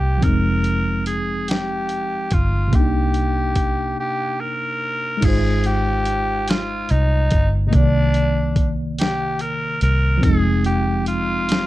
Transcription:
Already playing: C2 C3 A#3 D#4 G4 D5
0.17 F3 C4
0.22 F1 D#4 A#4, kick, closed hi-hat
0.29 G#3
0.64 closed hi-hat
1.06 G#4, closed hi-hat
1.48 G4, snare, closed hi-hat
1.89 closed hi-hat
2.31 G1 F4, kick, closed hi-hat
2.68 C3 A#3
2.73 C2 D4 G4, kick, closed hi-hat
2.80 D#4
3.14 closed hi-hat
3.56 kick, closed hi-hat
4.00 G4
4.41 A#4
5.17 G#3 D#4
5.22 G#1 F4 G#4, kick, closed hi-hat, crash
5.28 C5
5.64 G4, closed hi-hat
6.05 closed hi-hat
6.48 F4, snare, closed hi-hat
6.89 C2 D#4, closed hi-hat
7.31 G1, kick, closed hi-hat
7.67 C3 A#3 D#4
7.73 C2 D#3 D4, kick, closed hi-hat
7.78 D5
8.14 closed hi-hat
8.56 kick, closed hi-hat
8.98 G4, snare, closed hi-hat
9.39 A#1 A#4, closed hi-hat
9.81 C2 A#4, closed hi-hat
10.18 F3 C4
10.23 F1 D#4 G#4, kick, closed hi-hat
10.29 G#3
10.64 G4, closed hi-hat
11.06 F4, closed hi-hat
11.49 snare, closed hi-hat

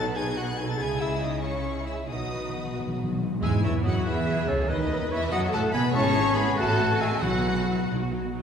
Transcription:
Already playing: B1 B2 D#4 B4 A5
0.16 G#4 G#5 G#6
0.37 F#4 F#5 F#6
0.57 F#3 D#4 G#4 G#5 G#6
0.68 A4 A5 A6
0.79 C#2 C#3 G#3 E4 G#4 G#5 G#6
1.01 E4 E5 E6
1.22 D#4 D#5 D#6
1.43 G#3 C#4 E4 G#4 C#5 C#6
1.87 E4 E5 E6
2.09 B1 B2 F#3 D#4 F#4 B4 D#5 D#6
2.17 B2
2.26 B2
2.33 B2
2.41 B2
2.49 B2
2.57 B2
2.64 B2
2.72 B2
2.80 B2
2.88 B2
2.96 B2
3.03 B2
3.11 B2
3.19 B2
3.26 B2
3.34 B2
3.42 E2 G#2 G#3 E4 G#4 E5 G#5
3.63 E2 E3 E4 C#5 E5
3.84 F#2 F#3 F#4 D#5 F#5
4.04 E2 E3 E4 G#4 B4 E5
4.48 C#2 C#3 C#4 A4 C#5
4.68 D#2 E2 D#3 D#4 B4 D#5
5.11 E2 E3 E4 C#5 E5
5.31 F#2 F#3 F#4 A4 D#5 F#5
5.52 A2 A3 A4 F#5 A5
5.73 B2 B3 B4 G#5 B5
5.94 G#1 G#3 C#4 E4 G#4 C#5 A5 C#6
6.04 B3 G#4
6.15 G#3 E4
6.25 B3 G#4
6.36 G#3 B3 E4 B4 G#5 B5
6.47 B3 G#4
6.56 A1 A3 F#4 A4 F#5 A5
6.68 C#4 A4
6.79 A3 F#4
6.90 C#4 A4
7.01 G#3 A3 F#4 G#4 E5 G#5
7.12 C#4 A4
7.22 B1 B2 F#3 E4 F#4 B4 F#5
7.34 B3 F#4
7.45 F#3 E4
7.56 B3 F#4
7.67 F#3 E4
7.77 B3 F#4
7.89 B1 F#3 D#4
7.99 B3 F#4
8.10 F#3 D#4
8.21 B3 F#4
8.32 F#3 D#4

